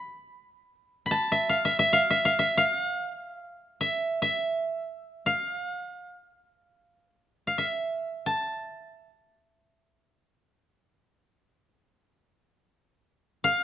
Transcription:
0.00 1.04 B5 medium
1.06 2.23 B5 soft
1.11 2.37 A5 medium
1.32 1.55 E5 soft
1.49 1.71 F5 medium
1.65 1.79 E5 medium
1.79 1.99 E5 medium
1.93 2.16 F5 medium
2.10 2.31 E5 medium
2.25 2.45 F5 medium
2.39 2.63 E5 medium
2.57 3.87 F5 medium
3.81 4.22 E5 medium
4.22 5.32 E5 medium
5.26 7.46 F5 soft
7.47 7.64 F5 soft
7.58 9.07 E5 soft
8.26 10.69 A5 soft
13.44 13.64 F5 medium

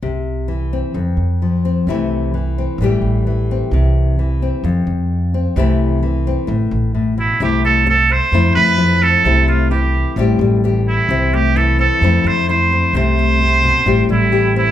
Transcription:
0.02 0.81 C2 medium
0.02 0.49 C3 medium
0.48 0.98 E3 medium
0.73 1.65 C4 soft
0.94 1.14 F2 medium
0.94 1.85 F2 medium
1.17 1.76 F2 medium
1.42 1.85 F3 soft
1.65 1.90 C4 soft
1.87 2.65 C2 medium
1.87 2.34 C3 medium
1.87 2.34 E3 soft
1.87 2.82 A3 medium
1.87 2.58 C4 medium
1.87 2.83 E4 medium
2.34 2.81 E3 medium
2.58 2.83 C4 soft
2.78 2.98 A1 medium
2.78 3.72 A2 medium
2.78 3.26 E3 medium
2.83 5.57 G3 medium
2.83 3.71 G4 medium
2.83 muted nylon-string guitar stroke medium
3.02 3.61 A1 medium
3.27 4.19 E3 medium
3.51 4.42 C4 soft
3.71 4.50 C2 medium
3.71 4.19 C3 medium
4.19 4.67 E3 medium
4.42 5.34 C4 soft
4.64 4.83 F2 medium
4.64 5.54 F2 medium
4.87 5.46 F2 medium
5.34 5.58 C4 soft
5.56 6.34 C2 medium
5.56 6.02 C3 medium
5.56 6.01 E3 medium
5.56 6.47 A3 medium
5.56 6.26 C4 medium
5.56 7.41 E4 medium
6.03 6.46 E3 medium
6.27 6.47 C4 medium
6.47 6.68 A1 medium
6.47 6.93 A2 medium
6.71 7.30 A1 medium
6.95 7.17 A2 medium
7.18 7.40 B2 medium
7.18 7.40 E4 medium
7.40 8.18 C2 medium
7.40 7.86 C3 medium
7.40 7.64 A3 medium
7.40 8.09 C4 medium
7.40 7.86 E4 medium
7.40 7.63 G4 medium
7.65 8.33 A3 medium
7.65 7.86 A4 medium
7.86 8.13 A4 medium
7.86 muted nylon-string guitar stroke medium
8.10 8.34 C4 medium
8.10 8.54 C5 loud
8.32 8.52 F2 medium
8.32 9.22 F2 medium
8.32 8.56 A3 medium
8.32 9.02 C4 medium
8.32 8.78 E4 medium
8.55 9.14 F2 medium
8.55 9.25 A3 medium
8.55 9.04 B4 loud
8.78 9.22 F3 medium
8.78 9.26 E4 medium
9.02 9.26 C4 medium
9.02 9.48 A4 loud
9.25 10.03 C2 medium
9.25 9.71 C3 medium
9.25 9.48 A3 medium
9.25 10.18 C4 medium
9.25 9.71 E4 medium
9.48 10.17 A3 medium
9.48 9.70 F4 medium
9.71 10.63 E3 medium
9.71 10.19 E4 medium
9.71 10.14 G4 medium
10.16 10.36 A1 medium
10.16 11.09 A2 medium
10.16 10.40 G3 medium
10.16 11.10 C4 medium
10.16 10.64 G4 medium
10.39 10.98 A1 medium
10.39 11.10 G3 medium
10.64 11.55 E3 medium
10.64 11.08 G4 medium
10.88 11.35 E4 medium
11.09 11.87 C2 medium
11.09 11.56 C3 medium
11.09 11.79 C4 medium
11.09 muted nylon-string guitar stroke medium
11.33 12.02 A3 medium
11.33 11.58 G4 medium
11.56 12.06 E3 medium
11.56 12.04 E4 medium
11.56 11.79 A4 loud
11.79 12.04 C4 medium
11.79 12.29 A4 medium
12.01 12.21 F2 medium
12.01 12.92 F2 medium
12.01 12.26 A3 medium
12.01 12.72 C4 medium
12.01 12.49 E4 medium
12.24 12.83 F2 medium
12.24 12.95 A3 medium
12.24 12.48 C5 loud
12.49 12.96 E4 medium
12.49 12.91 C5 medium
12.49 muted nylon-string guitar stroke medium
12.72 12.95 C4 medium
12.93 13.72 C2 medium
12.93 13.40 C3 medium
12.93 13.17 A3 medium
12.93 13.85 C4 medium
12.93 14.06 C5 loud
12.93 muted nylon-string guitar stroke medium
13.19 13.85 A3 medium
13.41 13.63 C3 medium
13.64 13.85 B2 medium
13.85 14.05 A1 medium
13.85 14.71 A2 medium
13.85 14.08 G3 medium
13.85 14.55 C4 medium
13.85 14.31 G4 medium
14.09 14.68 A1 medium
14.09 14.71 G3 medium
14.09 14.53 E4 medium
14.32 14.71 E3 medium
14.32 14.71 G4 medium
14.56 14.71 C4 medium
14.56 14.71 E4 loud

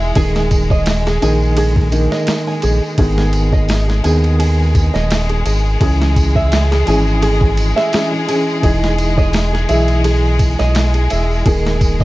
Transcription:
0.00 0.13 E1 medium
0.00 0.12 E3 medium
0.00 2.97 G#3 medium
0.00 0.14 G#4 loud
0.00 0.15 E5 medium
0.00 tambourine soft
0.15 1.19 D#1 loud
0.15 1.18 D#3 medium
0.15 1.19 A#3 medium
0.15 0.69 G#4 loud
0.15 1.20 G#4 medium
0.15 kick loud
0.15 ride medium
0.15 tambourine medium
0.35 snare medium
0.35 tambourine soft
0.51 kick loud
0.51 ride medium
0.51 tambourine loud
0.70 1.04 D#5 loud
0.70 kick medium
0.70 tambourine soft
0.86 snare loud
0.86 ride medium
0.86 tambourine medium
1.06 1.21 G#4 medium
1.06 snare medium
1.06 tambourine soft
1.22 2.09 A#1 medium
1.22 1.89 D#3 medium
1.22 1.90 A#3 medium
1.22 1.90 G#4 loud
1.22 1.56 G#5 medium
1.22 ride medium
1.22 tambourine medium
1.42 tambourine soft
1.57 1.75 G#4 loud
1.57 ride medium
1.57 tambourine medium
1.76 kick medium
1.76 tambourine soft
1.92 2.94 D#3 medium
1.92 2.95 A#3 medium
1.92 ride medium
1.92 tambourine medium
2.12 2.27 D#5 loud
2.12 snare soft
2.12 tambourine soft
2.27 snare loud
2.27 ride medium
2.27 tambourine medium
2.47 2.62 G#5 medium
2.47 tambourine soft
2.62 2.81 A#1 medium
2.62 2.82 G#4 medium
2.62 ride medium
2.62 tambourine medium
2.83 tambourine soft
2.98 4.01 G#1 loud
2.98 4.01 D#3 medium
2.98 12.04 G#3 medium
2.98 4.01 B3 medium
2.98 12.04 G#4 medium
2.98 3.51 G#4 loud
2.98 4.02 G#4 loud
2.98 kick loud
2.98 ride medium
2.98 tambourine medium
3.18 snare medium
3.18 tambourine soft
3.33 ride medium
3.33 tambourine medium
3.52 3.87 D#5 loud
3.52 kick medium
3.52 tambourine soft
3.69 snare loud
3.69 open hi-hat medium
3.69 tambourine soft
3.88 4.03 G#4 medium
3.88 snare soft
3.88 tambourine soft
4.03 4.91 D#2 medium
4.03 5.77 D#3 medium
4.03 5.77 B3 medium
4.03 5.78 G#4 medium
4.03 4.38 G#5 medium
4.03 ride medium
4.03 tambourine medium
4.24 ride soft
4.24 tambourine soft
4.39 4.92 G#4 loud
4.39 ride medium
4.39 tambourine soft
4.59 tambourine soft
4.75 kick loud
4.75 ride medium
4.75 tambourine medium
4.94 5.43 D#1 medium
4.94 5.28 D#5 medium
4.94 snare soft
4.94 tambourine soft
5.11 snare loud
5.11 ride medium
5.11 tambourine medium
5.29 5.44 G#4 medium
5.29 ride soft
5.29 tambourine soft
5.46 5.77 G#1 medium
5.46 5.80 G#5 medium
5.46 ride medium
5.46 tambourine loud
5.66 tambourine soft
5.80 6.84 C#2 loud
5.80 6.83 E3 medium
5.80 6.83 C#4 medium
5.80 6.34 G#4 loud
5.80 6.84 G#4 medium
5.80 kick loud
5.80 ride medium
5.80 tambourine soft
6.01 snare medium
6.01 tambourine soft
6.16 kick medium
6.16 ride medium
6.16 tambourine loud
6.35 6.69 E5 loud
6.35 kick medium
6.35 tambourine soft
6.52 snare loud
6.52 ride medium
6.52 tambourine medium
6.71 6.86 G#4 medium
6.71 snare medium
6.71 tambourine soft
6.85 7.73 G#1 medium
6.85 7.89 E3 medium
6.85 7.90 C#4 medium
6.85 7.91 G#4 loud
6.85 7.21 G#5 medium
6.85 ride medium
6.85 tambourine medium
7.07 tambourine soft
7.22 7.75 G#4 loud
7.22 ride medium
7.22 tambourine medium
7.41 kick loud
7.41 tambourine soft
7.57 ride medium
7.57 tambourine medium
7.76 8.10 E5 loud
7.76 snare medium
7.76 tambourine soft
7.92 8.24 E3 medium
7.92 8.24 C#4 medium
7.92 8.25 G#4 medium
7.92 snare loud
7.92 ride medium
7.92 tambourine medium
8.12 8.26 G#4 medium
8.12 tambourine soft
8.28 8.59 E3 medium
8.28 8.60 C#4 medium
8.28 8.60 G#4 medium
8.28 8.62 G#5 medium
8.28 ride medium
8.28 tambourine medium
8.47 tambourine soft
8.62 9.66 E1 loud
8.62 9.65 E3 medium
8.62 9.65 D#4 medium
8.62 9.16 G#4 loud
8.62 9.66 G#4 medium
8.62 kick loud
8.62 ride medium
8.62 tambourine soft
8.83 snare medium
8.83 tambourine soft
8.98 ride medium
8.98 tambourine medium
9.18 9.51 D#5 loud
9.18 kick medium
9.18 tambourine soft
9.33 snare loud
9.33 open hi-hat medium
9.33 tambourine soft
9.53 9.68 G#4 medium
9.53 snare soft
9.53 tambourine soft
9.68 10.56 B1 medium
9.68 11.41 E3 medium
9.68 11.43 G#4 loud
9.68 10.03 E5 medium
9.68 ride medium
9.68 tambourine medium
9.88 ride soft
9.88 tambourine soft
10.04 10.57 G#4 loud
10.04 ride medium
10.04 tambourine medium
10.24 tambourine soft
10.39 kick medium
10.39 ride medium
10.39 tambourine medium
10.59 11.08 B1 medium
10.59 10.93 D#5 loud
10.59 snare soft
10.59 tambourine soft
10.75 snare loud
10.75 ride medium
10.75 tambourine soft
10.94 11.09 G#4 medium
10.94 ride soft
10.94 tambourine soft
11.10 11.43 E1 medium
11.10 11.44 E5 medium
11.10 ride medium
11.10 tambourine loud
11.31 tambourine soft
11.46 12.04 D#1 loud
11.46 12.04 D#3 medium
11.46 12.04 A#3 medium
11.46 11.99 G#4 loud
11.46 12.04 G#4 medium
11.46 kick loud
11.46 ride medium
11.46 tambourine medium
11.65 snare medium
11.65 tambourine soft
11.81 kick loud
11.81 ride medium
11.81 tambourine medium
12.00 12.04 D#5 loud
12.00 kick medium
12.00 tambourine soft

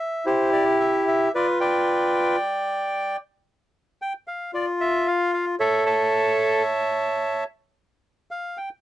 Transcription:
0.00 0.26 E5 medium
0.25 1.29 E4 medium
0.25 1.29 G4 medium
0.25 0.50 C5 medium
0.53 0.65 D5 loud
0.80 1.04 E5 medium
1.08 1.32 E5 medium
1.35 2.37 F4 medium
1.35 1.59 B4 medium
1.35 1.47 D5 loud
1.60 2.36 B4 medium
1.60 3.17 D5 medium
1.60 3.17 G5 medium
4.02 4.13 G5 medium
4.28 4.51 F5 medium
4.53 5.55 F4 medium
4.53 4.66 D5 medium
4.81 5.07 E5 loud
5.08 5.31 F5 loud
5.34 5.46 F5 medium
5.60 6.63 A4 medium
5.60 5.85 C#5 medium
5.60 5.84 E5 loud
5.86 7.44 C#5 medium
5.86 7.44 E5 medium
5.86 7.44 A5 medium
8.31 8.58 F5 medium
8.57 8.69 G5 medium

